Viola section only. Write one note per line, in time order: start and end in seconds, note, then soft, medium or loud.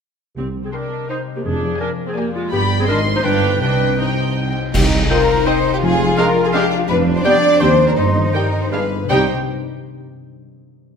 0.38 0.46 C4 soft
0.64 0.73 C4 soft
0.74 1.09 D4 soft
1.09 1.17 D#4 medium
1.36 1.40 A#3 soft
1.45 1.79 D4 medium
1.81 1.89 D4 medium
2.07 2.16 C4 medium
2.16 2.34 A#3 medium
2.34 2.52 G#3 medium
2.52 2.60 B3 medium
2.79 2.88 C4 medium
2.88 2.96 D4 medium
3.16 3.19 D#4 medium
3.25 3.60 D4 medium
3.62 3.99 D4 medium
3.99 4.36 D#4 soft
5.10 5.18 D#4 medium
5.10 5.18 C5 medium
5.46 5.54 D#4 medium
5.46 5.54 C5 medium
6.18 6.26 D4 medium
6.18 6.26 G#4 medium
6.54 6.62 D4 medium
6.54 6.62 G#4 medium
7.25 7.33 B3 medium
7.25 7.33 G4 medium
7.61 7.69 C4 medium
7.61 7.69 G4 medium
8.34 8.42 D#4 soft
8.34 8.42 G4 medium
8.72 8.80 D4 soft
8.72 8.80 G#4 soft
9.10 9.31 D#4 medium
9.10 9.32 G4 medium